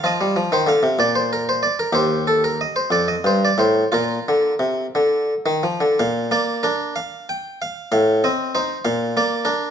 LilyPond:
<<
  \new Staff \with { instrumentName = "Harpsichord" } { \time 6/8 \key bes \major \tempo 4. = 63 << { ees''8. c''16 f''8 d''16 c''16 bes'16 c''16 d''16 bes'16 | c''8 a'16 bes'16 ees''16 c''16 d''16 ees''16 c''16 d''16 c''8 | bes'2~ bes'8 r8 | f''8 d''8 bes'8 f''8 g''8 f''8 |
f''8 ees''8 c''8 f''8 d''8 bes'8 | } \\ { f'4. r4. | g'4. r4. | f'2. | r2. |
r2. | } >> }
  \new Staff \with { instrumentName = "Harpsichord" } { \clef bass \time 6/8 \key bes \major f16 g16 f16 ees16 d16 c16 bes,4. | ees,4. f,8 g,8 a,8 | bes,8 d8 c8 d8. ees16 f16 d16 | bes,8 bes8 d'8 r4. |
a,8 c'8 ees'8 bes,8 bes8 d'8 | }
>>